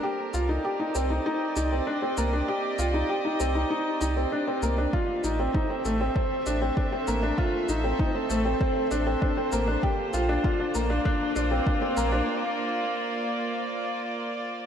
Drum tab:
SH |-x-x-x-x|-x-x-x-x|-x-x-x-x|-x-x-x-x|
BD |--------|--------|o-o-o-o-|o-o-o-o-|

SH |-x-x-x-x|--------|
BD |o-o-o-o-|--------|